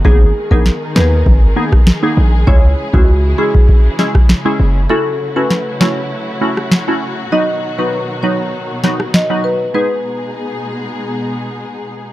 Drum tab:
SD |----o-o----ro---|----------oro---|----o-o----ro---|----------oro---|
BD |o--o----o--o----|o--o---oo--o----|----------------|----------------|

SD |----------------|
BD |----------------|